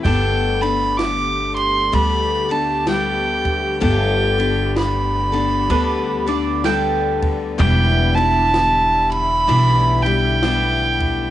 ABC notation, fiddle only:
X:1
M:4/4
L:1/8
Q:"Swing" 1/4=64
K:G
V:1 name="Fiddle"
g b d' c' b a g2 | g2 b4 z2 | g a2 b2 g3 |]